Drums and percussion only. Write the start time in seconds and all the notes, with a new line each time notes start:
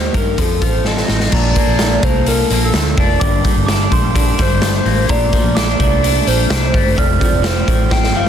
0.14 kick, closed hi-hat
0.38 kick, closed hi-hat
0.61 kick, closed hi-hat
0.85 snare
0.97 snare
1.08 snare
1.20 snare
1.32 kick, crash
1.56 kick, closed hi-hat
1.79 snare, closed hi-hat
2.03 kick, closed hi-hat
2.26 closed hi-hat
2.50 closed hi-hat
2.74 snare, closed hi-hat
2.97 kick, open hi-hat
3.21 kick, closed hi-hat
3.44 kick, closed hi-hat
3.68 snare, closed hi-hat
3.92 kick, closed hi-hat
4.16 kick, closed hi-hat
4.39 kick, snare, closed hi-hat
4.62 snare, closed hi-hat
4.86 open hi-hat
5.09 kick, closed hi-hat
5.33 kick, closed hi-hat
5.57 snare, closed hi-hat
5.80 kick, closed hi-hat
6.04 closed hi-hat
6.27 closed hi-hat
6.50 snare, closed hi-hat
6.74 kick, open hi-hat
6.98 kick, closed hi-hat
7.21 kick, closed hi-hat
7.44 snare, closed hi-hat
7.68 kick, closed hi-hat
7.91 kick, snare
8.03 snare